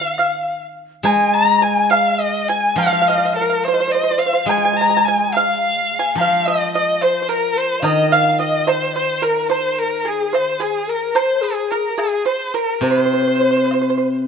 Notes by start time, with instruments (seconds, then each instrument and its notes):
Already playing: guzheng D#3, erhu F5
0.01 pipa F5
0.18 xiao F5, pipa F5, low woodblock
1.03 guzheng G#3, pipa G#5, xiao G#5, erhu G#5, high woodblock
1.34 erhu A#5, xiao A#5
1.62 pipa G#5, erhu G#5, xiao G#5
1.90 erhu F5, pipa F5, xiao F5, high woodblock, low woodblock
2.20 erhu D#5, xiao D#5
2.26 pipa D#5
2.48 erhu G#5, pipa G#5, xiao G#5
2.76 guzheng F3, pipa F5, erhu F5, xiao F5, high woodblock
2.86 pipa F5
2.93 pipa F5
3.02 pipa F5
3.07 erhu D#5, pipa F5
3.18 pipa F5
3.25 pipa F5
3.33 erhu A#4, xiao A#4, pipa F5
3.41 pipa F5
3.49 pipa F5
3.64 erhu C5, xiao C5, low woodblock
3.68 pipa C5
3.73 pipa C5, xiao D#5
3.80 pipa C5, xiao C5
3.88 pipa C5, xiao D#5
3.92 pipa C5, erhu D#5
3.97 xiao C5
4.03 pipa C5
4.11 pipa C5
4.18 pipa C5, erhu F5, xiao F5
4.26 pipa C5
4.33 pipa C5
4.46 guzheng G#3, erhu G#5, xiao G#5, high woodblock
4.50 pipa G#5
4.58 pipa G#5
4.65 pipa G#5
4.73 pipa G#5, erhu A#5
4.79 pipa G#5, xiao A#5
4.90 pipa G#5
4.97 pipa G#5
5.05 erhu G#5, xiao G#5, pipa G#5
5.32 erhu F5, xiao F5, high woodblock, low woodblock
5.37 pipa F5
5.98 xiao G#5, pipa G#5
6.15 guzheng F3, erhu F5, high woodblock
6.20 xiao F5, pipa F5
6.46 erhu D#5, xiao D#5, pipa D#5
6.74 xiao D#5, erhu D#5, pipa D#5
7.01 xiao C5, erhu C5, pipa C5, low woodblock
7.22 pipa C5
7.29 pipa A#4, erhu A#4, xiao A#4
7.57 erhu C5, xiao C5
7.80 guzheng D#3, xiao F5
7.84 pipa D#5, erhu D#5, xiao D#5, high woodblock
8.12 pipa F5, xiao F5, erhu F5
8.39 pipa D#5, erhu D#5, xiao D#5
8.67 pipa C5, erhu C5, xiao C5, high woodblock, low woodblock
8.91 xiao D#5
8.95 erhu C5, pipa C5, xiao C5
9.22 pipa A#4, erhu A#4, xiao A#4
9.50 pipa C5, erhu C5, xiao C5, high woodblock
9.79 xiao A#4, erhu A#4
10.05 pipa G#4, erhu G#4, xiao G#4
10.33 pipa C5, erhu C5, xiao C5, low woodblock
10.60 pipa G#4, xiao G#4, erhu G#4
10.88 xiao A#4, erhu A#4
11.15 pipa C5, xiao C5, erhu C5, high woodblock
11.42 xiao G#4, erhu G#4
11.71 erhu A#4, pipa A#4
11.97 xiao G#4, pipa G#4, erhu G#4, high woodblock, low woodblock
12.25 pipa C5, erhu C5
12.54 xiao A#4, pipa A#4, erhu A#4
12.81 guzheng C3, pipa C5, xiao C5, erhu C5, high woodblock
12.91 pipa C5
12.98 pipa C5
13.05 pipa C5
13.13 pipa C5
13.21 pipa C5
13.28 pipa C5
13.35 pipa C5
13.41 pipa C5
13.51 pipa C5
13.57 pipa C5
13.65 pipa C5
13.71 pipa C5, low woodblock
13.81 pipa C5
13.90 pipa C5
13.98 pipa C5